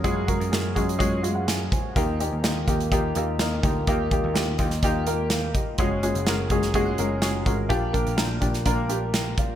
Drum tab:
HH |x-xxx-xxx-x-x-x-|x-x-x-xxx-x-x-x-|x-x-x-xxx-x-x-x-|x-xxx-xxx-x-x-x-|
SD |----o-------o---|----o-------o---|----o--o----o---|----o--o----o---|
BD |o-o---o-o-----o-|o-----o-o-----o-|o-o---o-o-----o-|o-----o-o-----o-|

HH |x-xxx-xxx-x-x-x-|
SD |----o--o----o---|
BD |o-o---o-o-----o-|